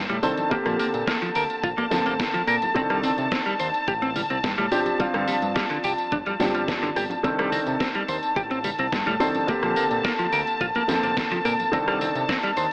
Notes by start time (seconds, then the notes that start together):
Already playing: D#3 C4 D4 A4 A5
0.09 A2 G3, closed hi-hat, tambourine, high conga
0.23 C2 D#3 C4 D4 A4 C5, open hi-hat, tambourine
0.38 closed hi-hat, tambourine, low conga
0.50 D3 A#3 C4 G4, muted picked electric bass stroke, kick, closed hi-hat, tambourine
0.66 A#2 F3, cross-stick, closed hi-hat, tambourine
0.79 A#3, open hi-hat, tambourine, high conga
0.94 A#2, closed hi-hat, tambourine
1.07 A#3, kick, snare, closed hi-hat, tambourine
1.22 F3, closed hi-hat, tambourine
1.35 D2 A#4, open hi-hat, tambourine
1.50 closed hi-hat, tambourine
1.64 A#1 F4, kick, closed hi-hat, tambourine
1.78 A#3, closed hi-hat, tambourine, low conga
1.90 F2 D3 F3 A#3 C4 A5, snare, open hi-hat, tambourine, high conga
2.05 F1 A#3, closed hi-hat, tambourine
2.20 kick, snare, closed hi-hat, tambourine
2.34 F3, closed hi-hat, tambourine, high conga
2.47 A#2 A#4, cross-stick, open hi-hat, tambourine
2.62 closed hi-hat, tambourine, low conga
2.74 C2 D#3 C4 D4 A4, kick, closed hi-hat, tambourine
2.90 G3, cross-stick, closed hi-hat, tambourine
3.03 C4, open hi-hat, tambourine, high conga
3.18 C3, closed hi-hat, tambourine
3.32 C4, kick, snare, closed hi-hat, tambourine
3.46 G3, closed hi-hat, tambourine
3.60 D#2 C5, open hi-hat, tambourine
3.74 closed hi-hat, tambourine
3.88 A1 G4, kick, closed hi-hat, tambourine
4.02 C4, closed hi-hat, tambourine
4.16 G3, open hi-hat, tambourine, high conga
4.30 C2 C4, closed hi-hat, tambourine
4.44 G2, kick, snare, closed hi-hat, tambourine
4.58 A2 G3, closed hi-hat, tambourine, high conga
4.71 G1 F3 C4 D4 G4, open hi-hat, tambourine
4.86 closed hi-hat, tambourine, low conga
4.99 F3 G3 C4 D4 F4, muted picked electric bass stroke, kick, closed hi-hat, tambourine
5.14 G2 D3, cross-stick, closed hi-hat, tambourine
5.28 G3, open hi-hat, tambourine, high conga
5.42 G2, closed hi-hat, tambourine
5.56 G3, kick, snare, closed hi-hat, tambourine
5.70 D3, closed hi-hat, tambourine
5.84 C2 G4, open hi-hat, tambourine
5.98 closed hi-hat, tambourine
6.12 G1 D4, kick, closed hi-hat, tambourine
6.26 G3, closed hi-hat, tambourine, low conga
6.39 G2 D3 F3 C4 D4 G4, snare, open hi-hat, tambourine, high conga
6.55 G1 G3, closed hi-hat, tambourine
6.68 kick, snare, closed hi-hat, tambourine
6.83 D3, closed hi-hat, tambourine, high conga
6.96 G1 G4, cross-stick, open hi-hat, tambourine
7.10 closed hi-hat, tambourine, low conga
7.23 C2 D#3 C4 D4 A4 A5, kick, closed hi-hat, tambourine
7.39 G3, cross-stick, closed hi-hat, tambourine
7.52 C4, open hi-hat, tambourine, high conga
7.67 C3, closed hi-hat, tambourine
7.80 C4, kick, snare, closed hi-hat, tambourine
7.95 G3, closed hi-hat, tambourine
8.08 D#2 C5, open hi-hat, tambourine
8.23 closed hi-hat, tambourine
8.36 A1 G4, kick, closed hi-hat, tambourine
8.51 C4, closed hi-hat, tambourine
8.64 G3, open hi-hat, tambourine, high conga
8.79 C2 C4, closed hi-hat, tambourine
8.92 G2, kick, snare, closed hi-hat, tambourine
9.07 A2 G3, closed hi-hat, tambourine, high conga
9.20 C2 D#3 C4 D4 A4 C5, open hi-hat, tambourine
9.35 closed hi-hat, tambourine, low conga
9.47 D3 A#3 C4 G4, muted picked electric bass stroke, kick, closed hi-hat, tambourine
9.63 A#2 F3, cross-stick, closed hi-hat, tambourine
9.76 A#3, open hi-hat, tambourine, high conga
9.91 A#2, closed hi-hat, tambourine
10.05 A#3, kick, snare, closed hi-hat, tambourine
10.19 F3, closed hi-hat, tambourine
10.33 D2 A#4, open hi-hat, tambourine
10.47 closed hi-hat, tambourine
10.61 A#1 F4, kick, closed hi-hat, tambourine
10.75 A#3, closed hi-hat, tambourine, low conga
10.88 F2 D3 F3 A#3 C4 A5, snare, open hi-hat, tambourine, high conga
11.03 F1 A#3, closed hi-hat, tambourine
11.17 kick, snare, closed hi-hat, tambourine
11.32 F3, closed hi-hat, tambourine, high conga
11.45 A#2 A#4, cross-stick, open hi-hat, tambourine
11.60 closed hi-hat, tambourine, low conga
11.72 C2 D#3 C4 D4 A4, kick, closed hi-hat, tambourine
11.87 G3, cross-stick, closed hi-hat, tambourine
12.01 C4, open hi-hat, tambourine, high conga
12.15 C3, closed hi-hat, tambourine
12.29 C4, kick, snare, closed hi-hat, tambourine
12.43 G3, closed hi-hat, tambourine
12.57 D#2 C5, open hi-hat, tambourine